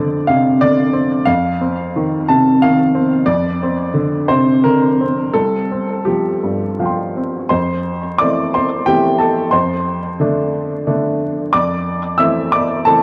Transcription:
0.00 1.25 F2 medium
0.00 0.48 D3 medium
0.00 0.15 C4 soft
0.00 0.28 D5 medium
0.27 0.82 C3 soft
0.27 0.61 F5 medium
0.61 1.15 D3 soft
0.61 1.28 D5 medium
0.93 1.27 C4 medium
1.25 3.22 F2 medium
1.25 2.27 F5 medium
1.61 2.15 C4 soft
1.96 2.48 D#3 medium
2.28 2.81 C3 soft
2.28 2.61 A5 medium
2.62 3.15 D#3 medium
2.62 3.27 F5 medium
2.95 3.27 C4 medium
3.26 5.30 F2 medium
3.26 4.28 D5 medium
3.63 4.16 C4 soft
3.94 4.50 D3 medium
4.28 4.85 C3 soft
4.28 4.63 C5 medium
4.64 5.21 D3 soft
4.64 5.35 A#4 medium
5.01 5.36 C4 soft
5.34 7.46 C2 soft
5.34 6.06 A4 medium
5.72 6.29 C4 soft
6.05 6.64 F3 soft
6.05 7.13 G4 medium
6.43 7.00 G2 soft
6.79 7.36 F3 soft
6.79 7.47 F5 soft
6.79 7.48 G5 soft
6.86 7.48 C6 soft
7.16 7.51 C4 soft
7.49 8.18 F2 medium
7.49 8.15 C5 medium
7.49 8.19 C6 medium
8.18 8.83 E3 soft
8.18 8.83 A3 soft
8.18 8.84 C4 soft
8.18 8.51 D5 medium
8.18 8.53 D6 medium
8.54 8.85 C5 medium
8.54 8.87 C6 medium
8.86 9.49 E3 soft
8.86 9.49 A3 soft
8.86 9.50 C4 soft
8.86 9.18 G4 medium
8.86 9.19 G5 medium
9.18 9.51 A4 soft
9.18 9.52 A5 medium
9.51 10.18 F2 medium
9.51 11.17 C5 medium
9.51 11.20 C6 medium
10.20 10.83 D3 soft
10.20 10.84 A3 soft
10.20 10.84 D4 medium
10.87 11.50 D3 soft
10.87 11.50 A3 soft
10.87 11.50 D4 soft
11.53 12.18 F2 medium
11.53 12.16 D5 medium
11.53 12.20 D6 loud
12.18 12.81 E3 soft
12.18 12.81 A3 soft
12.18 12.82 C4 medium
12.18 12.50 E5 medium
12.18 12.52 E6 medium
12.52 12.84 D5 medium
12.52 12.85 D6 medium
12.85 13.03 E3 soft
12.85 13.03 A3 medium
12.85 13.03 C4 medium
12.85 13.03 A4 medium
12.85 13.03 A5 loud

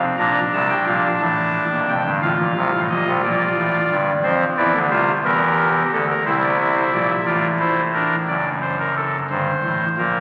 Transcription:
0.01 0.16 C4 medium
0.18 0.39 A#1 medium
0.18 0.39 A#2 medium
0.18 1.93 D4 medium
0.18 0.39 A#5 medium
0.53 0.74 C2 medium
0.53 0.74 C3 medium
0.53 0.67 A5 medium
0.70 0.84 G5 medium
0.87 1.08 A#1 medium
0.87 1.07 A#2 medium
0.87 1.08 F5 medium
1.20 1.64 A1 medium
1.20 1.64 A2 medium
1.20 1.79 A5 medium
1.71 1.86 D#1 medium
1.71 1.86 D#2 medium
1.88 2.03 F1 medium
1.88 2.03 F2 medium
1.88 2.10 G5 medium
2.04 2.19 G1 medium
2.04 2.19 G2 medium
2.22 2.36 A1 medium
2.22 2.37 A2 medium
2.22 3.95 F4 medium
2.22 2.80 F5 medium
2.38 2.53 A#1 medium
2.38 2.53 A#2 medium
2.56 2.70 C2 medium
2.56 2.70 C3 medium
2.73 2.87 A1 medium
2.73 2.87 A2 medium
2.89 3.04 A#1 medium
2.89 3.04 A#2 medium
2.89 3.10 D#5 medium
3.07 3.21 C2 medium
3.07 3.21 C3 medium
3.23 3.44 A#1 medium
3.23 3.44 A#2 medium
3.23 4.10 D5 medium
3.57 3.78 A1 medium
3.57 3.77 A2 medium
3.90 4.11 G1 medium
3.90 4.11 G2 medium
4.23 4.44 F2 medium
4.23 4.44 F3 medium
4.23 4.44 C4 medium
4.23 4.44 C5 medium
4.57 4.72 E2 medium
4.57 4.72 E3 medium
4.57 4.78 E4 medium
4.57 4.78 D5 medium
4.74 4.89 D2 medium
4.74 4.89 D3 medium
4.90 5.11 C2 medium
4.90 5.11 C3 medium
4.90 5.12 F4 medium
4.90 5.11 C5 medium
5.24 5.82 E2 medium
5.24 5.82 E3 medium
5.24 5.73 G4 medium
5.24 5.68 A#4 medium
5.75 5.90 G4 medium
5.93 6.13 D2 medium
5.93 6.13 D3 medium
5.93 6.07 A4 medium
6.10 6.24 A#4 medium
6.25 6.83 C2 medium
6.25 6.83 C3 medium
6.25 7.12 E4 medium
6.25 6.40 C5 medium
6.43 6.57 D5 medium
6.60 6.74 E5 medium
6.76 6.90 C5 medium
6.93 7.14 A#1 medium
6.93 7.14 A#2 medium
6.93 7.07 D5 medium
7.09 7.24 E5 medium
7.26 8.14 A1 medium
7.26 8.14 A2 medium
7.26 7.47 F4 medium
7.26 7.47 D5 medium
7.60 7.81 E4 medium
7.60 7.81 C5 medium
7.94 8.15 D4 medium
7.94 8.15 A#4 medium
8.28 9.16 F#1 medium
8.28 9.16 F#2 medium
8.28 8.49 D5 medium
8.62 8.77 C5 medium
8.79 8.94 A#4 medium
8.96 9.17 A4 medium
9.30 9.51 G1 medium
9.30 9.51 G2 medium
9.30 9.88 C5 medium
9.63 9.85 A1 medium
9.63 9.85 A2 medium
9.97 10.19 A#1 medium
9.97 10.19 A#2 medium
9.97 10.19 A#4 medium

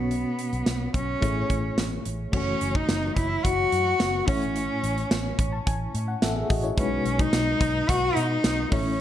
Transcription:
0.00 0.23 B1 medium
0.00 0.63 B2 medium
0.00 0.95 B3 medium
0.00 1.19 B3 medium
0.00 1.19 C#4 medium
0.00 1.19 F#4 medium
0.00 1.20 C#5 medium
0.11 closed hi-hat medium
0.39 closed hi-hat medium
0.53 0.63 B1 medium
0.53 closed hi-hat soft
0.66 0.87 B1 medium
0.66 snare loud
0.66 closed hi-hat medium
0.94 1.14 B1 medium
0.94 1.74 C#4 medium
0.94 kick medium
0.94 closed hi-hat medium
1.21 1.42 A1 medium
1.21 2.01 A2 medium
1.21 2.30 A3 medium
1.21 2.31 E4 medium
1.21 2.31 G#4 medium
1.21 2.31 C#5 medium
1.21 kick medium
1.21 closed hi-hat medium
1.50 1.70 A1 medium
1.50 kick medium
1.50 closed hi-hat medium
1.77 1.98 A1 medium
1.77 snare loud
1.77 closed hi-hat medium
2.05 2.26 A1 medium
2.05 closed hi-hat medium
2.32 2.53 F#1 loud
2.32 4.23 E3 medium
2.32 4.23 A3 medium
2.32 2.77 C#4 medium
2.32 4.24 F#4 medium
2.32 4.24 C#5 medium
2.32 kick loud
2.32 crash medium
2.61 2.81 F#1 medium
2.61 closed hi-hat medium
2.75 3.17 D#4 medium
2.75 kick medium
2.89 3.09 F#1 medium
2.89 snare loud
2.89 closed hi-hat medium
3.17 3.37 F#1 medium
3.17 3.46 E4 medium
3.17 kick medium
3.17 closed hi-hat medium
3.45 3.65 F#1 medium
3.45 4.30 F#4 loud
3.45 kick medium
3.45 closed hi-hat medium
3.72 3.92 F#2 medium
3.72 closed hi-hat medium
4.00 4.20 F#1 loud
4.00 snare loud
4.00 closed hi-hat medium
4.26 4.68 A1 medium
4.26 5.07 A2 medium
4.26 6.45 A3 medium
4.26 6.46 C#4 medium
4.26 5.39 C#4 medium
4.26 5.91 E4 medium
4.26 5.92 C#5 medium
4.26 kick loud
4.26 open hi-hat medium
4.42 closed hi-hat soft
4.56 closed hi-hat medium
4.83 5.03 A1 medium
4.83 closed hi-hat medium
4.98 closed hi-hat soft
5.11 5.31 A1 medium
5.11 snare loud
5.11 closed hi-hat loud
5.39 5.59 A1 loud
5.39 5.52 C#6 medium
5.39 kick medium
5.39 closed hi-hat medium
5.52 5.65 A5 medium
5.66 5.87 A1 loud
5.66 5.92 G#5 medium
5.66 kick medium
5.66 closed hi-hat medium
5.94 6.14 A2 medium
5.94 closed hi-hat medium
6.08 6.21 F#5 medium
6.22 6.42 A1 medium
6.22 6.36 A4 medium
6.22 6.35 E5 medium
6.22 6.35 F#5 medium
6.22 snare loud
6.22 closed hi-hat medium
6.36 6.49 G#4 medium
6.36 6.49 E5 medium
6.50 6.70 A1 medium
6.50 6.63 F#4 medium
6.50 6.63 D#5 medium
6.50 kick medium
6.50 open hi-hat medium
6.63 6.90 E4 medium
6.63 6.90 C#5 medium
6.63 closed hi-hat soft
6.76 6.98 B1 loud
6.76 7.57 B2 medium
6.76 8.67 G#3 medium
6.76 7.22 C#4 medium
6.76 8.68 D#4 medium
6.76 8.68 F#4 medium
6.76 8.69 B4 medium
6.76 kick loud
6.76 closed hi-hat medium
7.05 7.25 B1 medium
7.05 closed hi-hat medium
7.19 7.91 D#4 loud
7.19 kick loud
7.19 closed hi-hat soft
7.33 7.53 B1 loud
7.33 snare loud
7.33 closed hi-hat loud
7.61 7.81 B1 medium
7.61 kick medium
7.61 closed hi-hat medium
7.89 8.09 B1 loud
7.89 8.19 F#4 loud
7.89 kick medium
7.89 closed hi-hat medium
8.16 8.36 B2 medium
8.16 8.75 D#4 loud
8.16 closed hi-hat medium
8.44 8.64 B1 loud
8.44 snare loud
8.44 closed hi-hat medium
8.71 9.01 A1 medium
8.71 9.01 A2 medium
8.71 9.01 A3 medium
8.71 9.01 C#4 medium
8.71 9.01 E4 medium
8.71 9.01 C#5 medium
8.71 kick loud
8.71 open hi-hat medium

